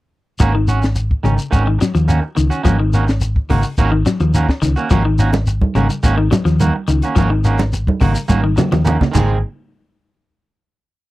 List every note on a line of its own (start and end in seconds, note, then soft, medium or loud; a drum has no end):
0.39 1.12 G#1 medium
0.39 0.54 D#3 medium
0.39 0.54 A#3 medium
0.39 0.54 C#4 medium
0.39 0.53 F#4 medium
0.39 muted clean electric guitar stroke medium
0.39 kick medium
0.39 closed hi-hat medium
0.39 shekere medium
0.55 0.77 D#3 medium
0.55 muted clean electric guitar stroke soft
0.68 0.83 C#4 medium
0.68 0.81 F#4 medium
0.68 muted clean electric guitar stroke medium
0.68 closed hi-hat soft
0.68 shekere medium
0.82 muted clean electric guitar stroke soft
0.82 snare medium
0.82 closed hi-hat soft
0.82 shekere soft
0.96 muted clean electric guitar stroke soft
0.96 closed hi-hat medium
0.96 shekere medium
1.11 kick medium
1.23 1.36 G#1 medium
1.23 1.47 C#3 medium
1.23 1.38 D#3 medium
1.23 1.36 C#4 medium
1.23 muted clean electric guitar stroke medium
1.23 closed hi-hat soft
1.23 shekere soft
1.36 muted clean electric guitar stroke soft
1.36 shekere medium
1.51 1.76 G#1 medium
1.51 1.66 D#3 medium
1.51 1.67 C#4 medium
1.51 1.64 F#4 medium
1.51 muted clean electric guitar stroke medium
1.51 kick medium
1.51 closed hi-hat medium
1.51 shekere medium
1.66 1.78 D#3 medium
1.66 muted clean electric guitar stroke soft
1.79 1.92 F#3 medium
1.79 muted clean electric guitar stroke soft
1.79 snare medium
1.79 closed hi-hat soft
1.79 shekere medium
1.95 2.19 D#2 medium
1.95 2.17 F3 medium
1.95 closed hi-hat soft
1.95 shekere soft
2.08 2.23 D#3 medium
2.08 2.21 A#3 medium
2.08 2.21 C#4 medium
2.08 2.21 F#4 medium
2.08 closed hi-hat medium
2.08 shekere medium
2.22 muted clean electric guitar stroke soft
2.35 2.50 C#2 medium
2.35 2.59 D#3 medium
2.35 muted clean electric guitar stroke soft
2.35 closed hi-hat soft
2.35 shekere medium
2.50 2.63 C#4 medium
2.50 2.63 F#4 medium
2.50 muted clean electric guitar stroke soft
2.50 closed hi-hat soft
2.50 shekere soft
2.63 3.37 G#1 medium
2.63 2.79 D#3 medium
2.63 2.76 F3 medium
2.63 2.79 A#3 medium
2.63 2.79 C#4 medium
2.63 2.78 F#4 medium
2.63 kick medium
2.63 closed hi-hat medium
2.63 shekere medium
2.79 3.02 D#3 medium
2.79 muted clean electric guitar stroke soft
2.93 3.08 D#3 medium
2.93 3.06 A#3 medium
2.93 3.06 C#4 medium
2.93 3.06 F#4 medium
2.93 closed hi-hat soft
2.93 shekere medium
3.07 muted clean electric guitar stroke soft
3.07 snare medium
3.07 closed hi-hat soft
3.07 shekere soft
3.21 muted clean electric guitar stroke soft
3.21 closed hi-hat medium
3.21 shekere medium
3.36 kick medium
3.49 3.62 G#1 medium
3.49 3.73 C#3 medium
3.49 3.64 D#3 medium
3.49 3.64 A#3 medium
3.49 3.65 F#4 medium
3.49 kick medium
3.49 open hi-hat medium
3.49 shekere soft
3.63 muted clean electric guitar stroke soft
3.63 shekere medium
3.78 4.02 G#1 medium
3.78 3.93 D#3 medium
3.78 3.92 A#3 medium
3.78 3.92 C#4 medium
3.78 3.92 F#4 medium
3.78 kick medium
3.78 closed hi-hat medium
3.78 shekere medium
3.92 4.03 D#3 medium
3.92 muted clean electric guitar stroke soft
4.06 4.17 F#3 medium
4.06 muted clean electric guitar stroke soft
4.06 snare medium
4.06 closed hi-hat soft
4.06 shekere medium
4.20 4.45 D#2 medium
4.20 4.43 F3 medium
4.20 closed hi-hat soft
4.20 shekere soft
4.34 4.49 D#3 medium
4.34 4.49 A#3 medium
4.34 4.48 C#4 medium
4.34 4.48 F#4 medium
4.34 closed hi-hat medium
4.34 shekere medium
4.49 muted clean electric guitar stroke soft
4.49 kick medium
4.49 snare medium
4.62 4.75 C#2 medium
4.62 4.85 D#3 medium
4.62 muted clean electric guitar stroke soft
4.62 kick medium
4.62 snare soft
4.62 closed hi-hat soft
4.62 shekere medium
4.76 4.90 A#3 soft
4.76 4.90 C#4 soft
4.76 4.90 F#4 medium
4.76 shekere soft
4.90 5.63 G#1 medium
4.90 5.05 D#3 medium
4.90 5.02 F3 medium
4.90 5.05 A#3 medium
4.90 5.04 C#4 medium
4.90 5.04 F#4 medium
4.90 kick medium
4.90 closed hi-hat medium
4.90 high conga soft
4.90 shekere medium
5.05 5.28 D#3 medium
5.05 muted clean electric guitar stroke soft
5.19 5.34 D#3 medium
5.19 5.33 A#3 medium
5.19 5.32 C#4 medium
5.19 5.32 F#4 medium
5.19 snare soft
5.19 closed hi-hat soft
5.19 shekere medium
5.33 muted clean electric guitar stroke soft
5.33 snare medium
5.33 closed hi-hat soft
5.33 high conga medium
5.33 shekere soft
5.47 muted clean electric guitar stroke soft
5.47 closed hi-hat medium
5.47 high conga soft
5.47 shekere medium
5.61 kick medium
5.61 high conga medium
5.75 5.88 G#1 medium
5.75 5.98 C#3 medium
5.75 5.90 D#3 medium
5.75 5.89 A#3 medium
5.75 5.88 C#4 medium
5.75 5.89 F#4 medium
5.75 closed hi-hat soft
5.75 high conga medium
5.75 shekere soft
5.90 muted clean electric guitar stroke soft
5.90 shekere medium
6.03 6.28 G#1 medium
6.03 6.18 D#3 medium
6.03 6.17 A#3 medium
6.03 6.17 C#4 medium
6.03 6.16 F#4 medium
6.03 kick medium
6.03 closed hi-hat medium
6.03 high conga soft
6.03 shekere medium
6.18 6.29 D#3 medium
6.18 muted clean electric guitar stroke soft
6.31 6.43 F#3 medium
6.31 muted clean electric guitar stroke soft
6.31 snare medium
6.31 closed hi-hat soft
6.31 high conga medium
6.31 shekere medium
6.45 6.70 D#2 medium
6.45 6.68 F3 medium
6.45 snare soft
6.45 closed hi-hat soft
6.45 shekere soft
6.60 6.75 D#3 medium
6.60 6.75 A#3 medium
6.60 6.74 F#4 medium
6.60 closed hi-hat medium
6.60 high conga medium
6.60 shekere medium
6.76 muted clean electric guitar stroke soft
6.87 7.01 C#2 medium
6.87 7.11 D#3 medium
6.87 muted clean electric guitar stroke soft
6.87 closed hi-hat soft
6.87 shekere medium
7.02 7.17 A#3 soft
7.02 7.17 C#4 medium
7.02 7.17 F#4 medium
7.02 closed hi-hat medium
7.02 shekere soft
7.15 7.89 G#1 loud
7.15 7.32 D#3 medium
7.15 7.28 F3 medium
7.15 7.31 A#3 medium
7.15 7.31 C#4 medium
7.15 7.31 F#4 medium
7.15 kick medium
7.15 closed hi-hat medium
7.15 high conga soft
7.15 shekere medium
7.30 7.53 D#3 medium
7.30 muted clean electric guitar stroke soft
7.44 7.60 D#3 medium
7.44 7.60 A#3 medium
7.44 7.59 C#4 medium
7.44 7.59 F#4 medium
7.44 closed hi-hat soft
7.44 shekere medium
7.58 muted clean electric guitar stroke soft
7.58 snare medium
7.58 closed hi-hat soft
7.58 high conga medium
7.58 shekere soft
7.73 muted clean electric guitar stroke soft
7.73 closed hi-hat medium
7.73 high conga soft
7.73 shekere medium
7.87 kick medium
7.87 high conga medium
8.01 8.14 G#1 medium
8.01 8.24 C#3 medium
8.01 8.16 D#3 medium
8.01 8.16 A#3 medium
8.01 8.14 F#4 medium
8.01 muted clean electric guitar stroke medium
8.01 kick medium
8.01 open hi-hat medium
8.01 shekere soft
8.15 muted clean electric guitar stroke soft
8.15 shekere medium
8.28 8.54 G#1 medium
8.28 8.44 D#3 medium
8.28 8.43 A#3 medium
8.28 8.43 C#4 medium
8.28 8.42 F#4 medium
8.28 kick medium
8.28 closed hi-hat medium
8.28 high conga medium
8.28 shekere medium
8.43 8.55 D#3 medium
8.43 muted clean electric guitar stroke soft
8.56 8.70 F#3 medium
8.56 muted clean electric guitar stroke soft
8.56 snare medium
8.56 closed hi-hat soft
8.56 low conga medium
8.56 shekere medium
8.72 8.96 D#2 loud
8.72 8.95 F3 medium
8.72 snare soft
8.72 closed hi-hat soft
8.72 low conga medium
8.72 shekere soft
8.85 9.00 D#3 medium
8.85 8.99 A#3 medium
8.85 8.99 C#4 medium
8.85 8.98 F#4 medium
8.85 closed hi-hat medium
8.85 low conga medium
8.85 shekere medium
9.00 muted clean electric guitar stroke soft
9.00 kick medium
9.00 snare medium
9.00 low conga medium
9.12 9.41 G#1 loud
9.12 9.32 G#2 medium
9.12 9.36 D#3 medium
9.12 9.37 G#3 medium
9.12 9.37 C4 medium
9.12 9.38 G#4 medium
9.12 kick medium
9.12 low conga medium
9.12 shekere medium
9.16 crash medium